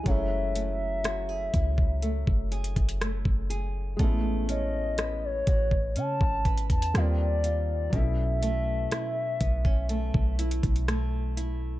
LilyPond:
<<
  \new Staff \with { instrumentName = "Soft synth lead" } { \time 4/4 \key fis \dorian \tempo 4 = 61 e''2. r4 | r8 dis''8. cis''8. a''8. a''16 d''4 | e''2. r4 | }
  \new Staff \with { instrumentName = "Nylon-string guitar" } { \time 4/4 \key fis \dorian fis8 a8 fis'16 gis'16 e'8 a8 gis'8 a8 gis'8 | a8 cis'8 b'8 fis'16 r16 cis'8 b'8 dis8 eis'8 | b,8 a8 e'8 b16 cis'16 a8 e'8 a8 e'8 | }
  \new Staff \with { instrumentName = "Felt piano" } { \time 4/4 \key fis \dorian <gis a cis' e'>1 | <gis b cis' e'>2. <g ais bis eis'>4 | <fis a cis' e'>1 | }
  \new Staff \with { instrumentName = "808-style bass" } { \clef bass \time 4/4 \key fis \dorian fis,,4. cis,8. fis,,8 fis,,8 fis,,8. | a,,4. a,,8 cis16 gis,,8 e,16 dis,4 | b,,4 r8 b,,8. b,,8 b,,4~ b,,16 | }
  \new DrumStaff \with { instrumentName = "Drums" } \drummode { \time 4/4 <hh bd>8 hh8 <hh ss>8 <hh bd>16 bd16 hh16 bd16 hh32 hh32 <hh bd>32 hh32 <hh ss>16 bd16 hh8 | <hh bd>8 hh8 <hh ss>8 <hh bd>16 bd16 hh16 bd16 <hh bd>32 hh32 <hh bd>32 hh32 <hh ss>8 hh8 | <hh bd>8 hh8 <hh ss>8 <hh bd>16 bd16 hh16 bd16 hh32 hh32 <hh bd>32 hh32 <hh ss>8 hh8 | }
>>